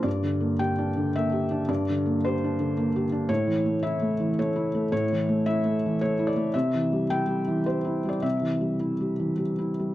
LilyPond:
<<
  \new Staff \with { instrumentName = "Felt piano" } { \time 3/4 \key c \mixolydian \tempo 4 = 110 d''4 g''4 e''4 | d''4 c''4. r8 | cis''4 e''4 cis''4 | cis''4 e''4 cis''8 d''8 |
e''4 g''4 c''8. d''16 | e''2 r4 | }
  \new Staff \with { instrumentName = "Felt piano" } { \time 3/4 \key c \mixolydian \tuplet 3/2 { g,8 d8 bes8 g'8 d'8 d8 bes8 g'8 d'8 } | \tuplet 3/2 { g,8 d8 bes8 g'8 d'8 d8 bes8 g'8 d'8 } | \tuplet 3/2 { a,8 e8 a8 e'8 a8 e8 a8 e'8 a8 } | \tuplet 3/2 { a,8 e8 a8 e'8 a8 e8 a8 e'8 a8 } |
\tuplet 3/2 { c8 e8 g8 e'8 g8 e8 g8 e'8 g8 } | \tuplet 3/2 { c8 e8 g8 e'8 g8 e8 g8 e'8 g8 } | }
>>